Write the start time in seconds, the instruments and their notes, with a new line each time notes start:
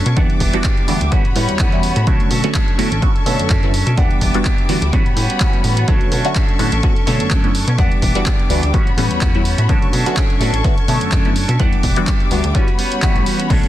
Already playing: string section A4 C#6
0.05 analog synth bass B2, clean electric guitar C#4 D4 A4, closed hi-hat
0.16 analog synth bass E2, analog polysynth E3 G3 B3 D4 F#5, string section G3 E5 D6, clean electric guitar B3 D4 G4, kick, closed hi-hat
0.30 analog synth bass E1, closed hi-hat
0.40 analog synth bass E1, clean electric guitar B3 D4 G4, kick, open hi-hat
0.53 analog polysynth E3 G3 B3 D4 F#4, closed hi-hat
0.64 clean electric guitar B3 D4 G4, kick, clap, closed hi-hat
0.77 closed hi-hat
0.87 analog synth bass D2, analog polysynth E3 G3 B3 D4 F#4, clean electric guitar B3 D4 G4, open hi-hat
1.00 analog synth bass D2, clean electric guitar D4 G4, closed hi-hat
1.11 analog polysynth E3 G3 B3 C#4 F#4, clean electric guitar G3 B3 C#4 F#4, string section G3 C#5 F#5 B5, kick, closed hi-hat
1.24 analog synth bass A2, clean electric guitar B3 C#4 F#4, closed hi-hat
1.35 analog synth bass A2, analog polysynth E3 G3 B3 C#4, clean electric guitar G3 B3 C#4 F#4, open hi-hat
1.49 analog synth bass E2, closed hi-hat
1.59 analog synth bass E2, clean electric guitar G3 B3 C#4 F#4, kick, clap, closed hi-hat
1.72 analog polysynth E3 G3 B3 C#4 E4, closed hi-hat
1.83 open hi-hat
1.96 analog synth bass A2, clean electric guitar B3 C#4 F#4, closed hi-hat
2.07 analog synth bass B1, analog polysynth D3 A3 B3 F#4 C#5, clean electric guitar F#3 C#4 D4 A4, string section A4 C#6, kick, closed hi-hat
2.20 closed hi-hat
2.30 analog synth bass B2, clean electric guitar F#3 C#4 D4 A4, open hi-hat
2.44 analog polysynth D3 A3 B3 C#4 F#4, closed hi-hat
2.54 clean electric guitar F#3 C#4 D4 A4, kick, clap, closed hi-hat
2.68 closed hi-hat
2.78 analog synth bass A2, analog polysynth D3 A3 B3 C#4 F#4, clean electric guitar F#3 C#4 D4 A4, open hi-hat
2.91 analog synth bass A1, clean electric guitar C#4 D4 A4, closed hi-hat
3.02 analog polysynth D3 A3 B3 C#4 F#4, kick, closed hi-hat
3.15 clean electric guitar C#4 D4 A4, closed hi-hat
3.26 analog synth bass B2, analog polysynth D3 A3 B3 A4 C#5, clean electric guitar F#3 C#4 D4 A4, open hi-hat
3.39 analog synth bass F#2, closed hi-hat
3.50 analog synth bass F#2, clean electric guitar F#3 C#4 D4 A4, kick, clap, closed hi-hat
3.63 analog polysynth D3 A3 B3 C#4 E4, closed hi-hat
3.74 open hi-hat
3.86 analog synth bass B2, clean electric guitar C#4 D4 A4, closed hi-hat
3.97 analog synth bass E2, analog polysynth E3 G3 B3 D4 F#5, string section G3 E5 D6, clean electric guitar B3 D4 G4, kick, closed hi-hat
4.11 analog synth bass E1, closed hi-hat
4.21 analog synth bass E1, clean electric guitar B3 D4 G4, kick, open hi-hat
4.34 analog polysynth E3 G3 B3 D4 F#4, closed hi-hat
4.45 clean electric guitar B3 D4 G4, kick, clap, closed hi-hat
4.58 closed hi-hat
4.68 analog synth bass D2, analog polysynth E3 G3 B3 D4 F#4, clean electric guitar B3 D4 G4, open hi-hat
4.81 analog synth bass D2, clean electric guitar D4 G4, closed hi-hat
4.92 analog polysynth E3 G3 B3 C#4 F#4, clean electric guitar G3 B3 C#4 F#4, string section C#5 F#5 B5, kick, closed hi-hat
5.05 analog synth bass A2, clean electric guitar B3 C#4 F#4, closed hi-hat
5.16 analog synth bass A2, clean electric guitar G3 B3 C#4 F#4, open hi-hat
5.30 closed hi-hat
5.40 analog polysynth E3 G3 B3 C#4 F#4, clean electric guitar G3 B3 C#4 F#4, kick, clap, closed hi-hat
5.53 closed hi-hat
5.64 analog synth bass A2, open hi-hat
5.76 clean electric guitar B3 C#4 F#4, closed hi-hat
5.87 analog synth bass B1, analog polysynth D3 A3 B3 F#4 C#5, clean electric guitar F#3 C#4 D4 A4, string section A4 C#6, kick, closed hi-hat
6.01 closed hi-hat
6.11 analog synth bass B2, clean electric guitar F#3 C#4 D4 A4, open hi-hat
6.25 analog polysynth D3 A3 B3 C#4 F#4, closed hi-hat
6.35 clean electric guitar F#3 C#4 D4 A4, kick, clap, closed hi-hat
6.49 closed hi-hat
6.59 analog synth bass A2, analog polysynth D3 A3 B3 C#4 F#4, clean electric guitar F#3 C#4 D4 A4, open hi-hat
6.72 analog synth bass A1, clean electric guitar C#4 D4 A4, closed hi-hat
6.83 analog polysynth D3 A3 B3 C#4 F#4, kick, closed hi-hat
6.95 clean electric guitar C#4 D4 A4, closed hi-hat
7.06 analog synth bass B2, analog polysynth D3 A3 B3 A4 C#5, clean electric guitar F#3 C#4 D4 A4, open hi-hat
7.20 analog synth bass F#2, closed hi-hat
7.30 analog synth bass F#2, clean electric guitar F#3 C#4 D4 A4, kick, clap, closed hi-hat
7.44 analog polysynth D3 A3 B3 C#4 E4, closed hi-hat
7.55 open hi-hat
7.67 analog synth bass B2, clean electric guitar C#4 D4 A4, closed hi-hat
7.78 analog synth bass E2, analog polysynth E3 G3 B3 D4 F#5, string section G3 E5 D6, clean electric guitar B3 D4 G4, kick, closed hi-hat
7.92 closed hi-hat
8.01 analog synth bass E1, clean electric guitar B3 D4 G4, kick, open hi-hat
8.15 analog polysynth E3 G3 B3 D4 F#4, closed hi-hat
8.25 clean electric guitar B3 D4 G4, kick, clap, closed hi-hat
8.39 closed hi-hat
8.49 analog synth bass D2, analog polysynth E3 G3 B3 D4 F#4, clean electric guitar B3 D4 G4, open hi-hat
8.62 analog synth bass D2, clean electric guitar D4 G4, closed hi-hat
8.73 analog polysynth E3 G3 B3 C#4 F#4, clean electric guitar G3 B3 C#4 F#4, string section C#5 F#5 B5, kick, closed hi-hat
8.86 analog synth bass A2, clean electric guitar B3 C#4 F#4, closed hi-hat
8.97 analog synth bass A2, analog polysynth E3 G3 B3 C#4, clean electric guitar G3 B3 C#4 F#4, open hi-hat
9.11 analog synth bass E2, closed hi-hat
9.21 analog synth bass E2, clean electric guitar G3 B3 C#4 F#4, kick, clap, closed hi-hat
9.35 analog polysynth E3 G3 B3 C#4 E4, closed hi-hat
9.45 open hi-hat
9.57 analog synth bass A2, clean electric guitar B3 C#4 F#4, closed hi-hat
9.69 analog synth bass B1, analog polysynth D3 A3 B3 F#4 C#5, clean electric guitar F#3 C#4 D4 A4, string section A4 C#6, kick, closed hi-hat
9.82 closed hi-hat
9.92 analog synth bass B2, clean electric guitar F#3 C#4 D4 A4, open hi-hat
10.06 analog polysynth D3 A3 B3 C#4 F#4, closed hi-hat
10.16 clean electric guitar F#3 C#4 D4 A4, kick, clap, closed hi-hat
10.30 closed hi-hat
10.40 analog synth bass A2, analog polysynth D3 A3 B3 C#4 F#4, clean electric guitar F#3 C#4 D4 A4, open hi-hat
10.53 analog synth bass A1, clean electric guitar C#4 D4 A4, closed hi-hat
10.64 analog polysynth D3 A3 B3 C#4 F#4, kick, closed hi-hat
10.77 clean electric guitar C#4 D4 A4, closed hi-hat
10.88 analog synth bass B2, analog polysynth D3 A3 B3 A4 C#5, clean electric guitar F#3 C#4 D4 A4, open hi-hat
11.01 analog synth bass F#2, closed hi-hat
11.12 analog synth bass F#2, clean electric guitar F#3 C#4 D4 A4, kick, clap, closed hi-hat
11.25 analog polysynth D3 A3 B3 C#4 E4, closed hi-hat
11.36 open hi-hat
11.48 analog synth bass B2, clean electric guitar C#4 D4 A4, closed hi-hat
11.59 analog synth bass E2, analog polysynth E3 G3 B3 D4 F#5, string section G3 E5 D6, clean electric guitar B3 D4 G4, kick, closed hi-hat
11.73 analog synth bass E1, closed hi-hat
11.83 analog synth bass E1, clean electric guitar B3 D4 G4, kick, open hi-hat
11.96 analog polysynth E3 G3 B3 D4 F#4, closed hi-hat
12.07 clean electric guitar B3 D4 G4, kick, clap, closed hi-hat
12.20 closed hi-hat
12.30 analog synth bass D2, analog polysynth E3 G3 B3 D4 F#4, clean electric guitar B3 D4 G4, open hi-hat
12.43 analog synth bass D2, clean electric guitar D4 G4, closed hi-hat
12.54 analog polysynth E3 G3 B3 C#4 F#4, clean electric guitar G3 B3 C#4 F#4, string section C#5 F#5 B5, kick, closed hi-hat
12.67 clean electric guitar B3 C#4 F#4, closed hi-hat
12.78 clean electric guitar G3 B3 C#4 F#4, open hi-hat
12.92 closed hi-hat
13.02 analog polysynth E3 G3 B3 C#4 F#4, clean electric guitar G3 B3 C#4 F#4, kick, clap, closed hi-hat
13.16 analog synth bass A1, closed hi-hat
13.26 open hi-hat
13.38 clean electric guitar B3 C#4 F#4, closed hi-hat
13.49 analog synth bass B1, analog polysynth D3 A3 B3 F#4 C#5, clean electric guitar F#3 C#4 D4 A4, string section A4 C#6, kick, closed hi-hat, crash
13.63 closed hi-hat